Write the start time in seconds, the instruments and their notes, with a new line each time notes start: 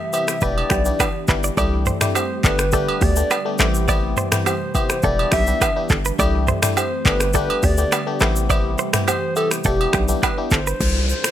Already playing: analog synth pad C3 E3 G3 A3 G4, soft synth lead E5
0.13 fm electric piano B3 C4 E4 G4, soft synth lead E5, high agogo, shaker
0.28 finger snap, cross-stick, shaker
0.41 808-style bass E1, analog synth pad E3 B3 D4 G4, fm electric piano B3 D4 E4 G4, clean electric guitar B4, soft synth lead D5, kick, shaker
0.58 high agogo
0.70 808-style bass B1, clean electric guitar G4, finger snap, kick, cross-stick, shaker
0.85 fm electric piano B3 D4 E4 G4, shaker
1.00 clean electric guitar B4, finger snap, kick, cross-stick, high agogo, low woodblock, shaker
1.28 808-style bass G1, fm electric piano B3 D4 E4 G4, clean electric guitar B4, kick, clap, shaker
1.44 clean electric guitar D5, shaker
1.57 808-style bass C2, analog synth pad E3 G3 A3 C4, fm electric piano A3 D4 E4 G4, clean electric guitar D5, kick, high agogo, shaker
1.86 clean electric guitar C5, mid tom, shaker
2.01 fm electric piano A3 D4 E4 G4, finger snap, cross-stick, mid tom, shaker
2.15 clean electric guitar G4, soft synth lead C5, high agogo, low woodblock, shaker
2.44 808-style bass G1, analog synth pad D3 B3, fm electric piano A3 B3 D4 G4, soft synth lead B4, kick, clap, high agogo, shaker
2.59 finger snap, cross-stick, shaker
2.72 fm electric piano A3 B3 D4 G4, clean electric guitar A4, soft synth lead B4, kick, shaker
2.89 high agogo
3.01 808-style bass D2, clean electric guitar G4, soft synth lead D5, kick, open hi-hat, shaker
3.16 fm electric piano A3 B3 D4 G4, shaker
3.31 clean electric guitar B4, finger snap, cross-stick, high agogo, low woodblock, shaker
3.45 fm electric piano A3 B3 D4 G4
3.58 808-style bass A1, analog synth pad C3 E3, fm electric piano B3 C4 E4 G4, clean electric guitar A4, finger snap, cross-stick, clap, shaker
3.74 shaker
3.88 fm electric piano B3 C4 E4 G4, clean electric guitar D5, kick, high agogo, shaker
4.17 clean electric guitar C5, mid tom, shaker
4.32 fm electric piano B3 C4 E4 G4, finger snap, cross-stick, mid tom, shaker
4.46 clean electric guitar G4, soft synth lead C5, high agogo, low woodblock, shaker
4.74 fm electric piano B3 C4 E4 G4, soft synth lead C5, kick, high agogo, shaker
4.90 finger snap, cross-stick, shaker
5.03 808-style bass E1, analog synth pad E3 B3 D4, fm electric piano B3 D4 E4 G4, clean electric guitar A4, soft synth lead D5, kick, shaker
5.19 high agogo
5.31 808-style bass B1, clean electric guitar G4, soft synth lead E5, finger snap, kick, cross-stick, open hi-hat, shaker
5.47 fm electric piano B3 D4 E4 G4, shaker
5.61 clean electric guitar B4, finger snap, kick, cross-stick, high agogo, low woodblock, shaker
5.76 fm electric piano B3 D4 E4 G4
5.89 808-style bass G1, clean electric guitar A4, kick, clap, shaker
6.05 clean electric guitar B4, shaker
6.19 808-style bass C2, analog synth pad G3 A3 C4, fm electric piano A3 D4 E4 G4, clean electric guitar D5, kick, high agogo, shaker
6.47 clean electric guitar C5, mid tom, shaker
6.62 fm electric piano A3 D4 E4 G4, finger snap, cross-stick, mid tom, shaker
6.77 clean electric guitar G4, soft synth lead C5, high agogo, low woodblock, shaker
7.05 808-style bass G1, analog synth pad D3 A3 B3 G4, fm electric piano A3 B3 D4 G4, soft synth lead B4, kick, clap, high agogo, shaker
7.20 finger snap, cross-stick, shaker
7.33 fm electric piano A3 B3 D4 G4, clean electric guitar A4, soft synth lead B4, kick, shaker
7.50 high agogo
7.63 808-style bass D2, clean electric guitar G4, soft synth lead D5, kick, open hi-hat, shaker
7.77 fm electric piano A3 B3 D4 G4, shaker
7.92 clean electric guitar B4, finger snap, cross-stick, high agogo, low woodblock, shaker
8.07 fm electric piano A3 B3 D4 G4
8.20 808-style bass A1, analog synth pad C3 E3 G3, fm electric piano B3 C4 E4 G4, clean electric guitar A4, finger snap, cross-stick, clap, shaker
8.36 shaker
8.49 fm electric piano B3 C4 E4 G4, clean electric guitar D5, kick, high agogo, shaker
8.78 clean electric guitar C5, shaker
8.93 fm electric piano B3 C4 E4 G4, finger snap, cross-stick, mid tom, shaker
9.08 clean electric guitar G4, soft synth lead C5, high agogo, low woodblock, shaker
9.36 fm electric piano B3 C4 E4 G4, soft synth lead A4, high agogo, shaker
9.51 finger snap, cross-stick, shaker
9.64 808-style bass E1, analog synth pad G3 B3 D4, fm electric piano B3 D4 E4 G4, soft synth lead G4, clean electric guitar A4, kick, shaker
9.81 high agogo
9.93 808-style bass B1, clean electric guitar G4, finger snap, kick, cross-stick, shaker
10.08 fm electric piano B3 D4 E4 G4, shaker
10.23 clean electric guitar B4, soft synth lead B4, finger snap, kick, cross-stick, high agogo, low woodblock, shaker
10.37 fm electric piano B3 D4 E4 G4
10.51 808-style bass G1, clean electric guitar A4, soft synth lead C5, kick, clap, shaker
10.67 clean electric guitar B4, shaker
10.81 808-style bass C2, kick, crash, downlifter, shaker
11.09 soft synth lead C5, shaker
11.24 finger snap, cross-stick, shaker